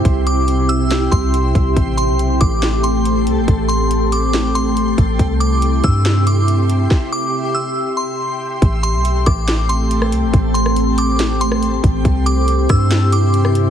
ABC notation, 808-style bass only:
X:1
M:4/4
L:1/16
Q:1/4=140
K:Am
V:1 name="808-style bass" clef=bass
C,,8- C,,2 C,,4 C,,2 | A,,,3 B,,,3 A,,,8 C,, A,,, | A,,,12- A,,,2 A,,,2 | C,,6 G,,8- G,,2 |
z16 | A,,,3 B,,,3 A,,,8 C,, A,,, | A,,,12- A,,,2 A,,,2 | C,,6 G,,8- G,,2 |]